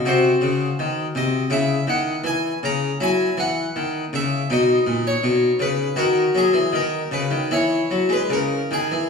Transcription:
<<
  \new Staff \with { instrumentName = "Harpsichord" } { \time 4/4 \key cis \dorian \tempo 4 = 80 << { c''4. ees''8 e''8 fis''8 gis''8 ais''8 | gis''8 fis''4 e''8 dis''8. cis''8. b'8 | ais'8 gis'8 ais'8 b'8 cis''8. b'16 ais'8 gis'8 | } \\ { ges'2 e'2 | e'2 dis'2 | fis'2 e'2 | } >> }
  \new Staff \with { instrumentName = "Harpsichord" } { \clef bass \time 4/4 \key cis \dorian c8 cis8 ees8 c8 cis8 dis8 e8 cis8 | fis8 e8 dis8 cis8 b,8 ais,8 b,8 cis8 | dis8 fis16 e16 dis8 cis16 dis16 e8 fis16 gis16 cis8 dis16 e16 | }
>>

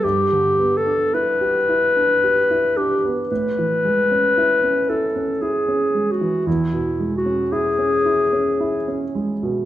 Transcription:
<<
  \new Staff \with { instrumentName = "Clarinet" } { \time 3/4 \key e \minor \tempo 4 = 56 \tuplet 3/2 { g'4 a'8 } b'4. g'8 | b'4. a'8 \tuplet 3/2 { gis'4 fis'8 } | \tuplet 3/2 { e'4 fis'8 } gis'4. r8 | }
  \new Staff \with { instrumentName = "Grand piano" } { \time 3/4 \key e \minor g,16 d16 b16 d'16 e'16 g'16 e'16 d'16 g'16 e'16 d'16 b16 | a,16 e16 gis16 cis'16 e'16 cis'16 e'16 cis'16 e'16 cis'16 gis16 e16 | e,16 b,16 gis16 cis'16 e'16 cis'16 e'16 cis'16 e'16 cis'16 gis16 b,16 | }
>>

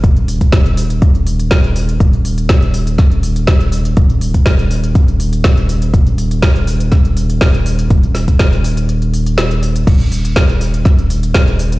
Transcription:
<<
  \new Staff \with { instrumentName = "Analog synth bass" } { \clef bass \time 4/4 \key c \phrygian \tempo 4 = 122 ees,,1 | ees,,1 | ees,,1 | ees,,1 |
ees,,1 | ees,,1 | }
  \new DrumStaff \with { instrumentName = "Drums" } \drummode { \time 4/4 <hh bd>16 hh16 hho16 <hh bd>16 <hh bd sn>16 hh16 hho16 hh16 <hh bd>16 hh16 hho16 hh16 <hh bd sn>16 hh16 hho16 hh16 | <hh bd>16 hh16 hho16 hh16 <hh bd sn>16 hh16 hho16 hh16 <hh bd sn>16 hh16 hho16 hh16 <hh bd sn>16 hh16 hho16 hh16 | <hh bd>16 hh16 hho16 <hh bd>16 <hh bd sn>16 hh16 hho16 hh16 <hh bd>16 hh16 hho16 hh16 <hh bd sn>16 hh16 hho16 hh16 | <hh bd>16 hh16 hho16 hh16 <hh bd sn>16 hh16 hho16 hh16 <hh bd sn>16 hh16 hho16 hh16 <hh bd sn>16 hh16 hho16 hh16 |
<hh bd>16 hh16 <hho sn>16 <hh bd>16 <hh bd sn>16 hh16 hho16 hh16 hh16 hh16 hho16 hh16 <hh sn>16 hh16 hho16 hh16 | <cymc hh bd>16 hh16 hho16 hh16 <hh bd sn>16 hh16 hho16 hh16 <hh bd sn>16 hh16 hho16 hh16 <hh bd sn>16 hh16 hho16 hh16 | }
>>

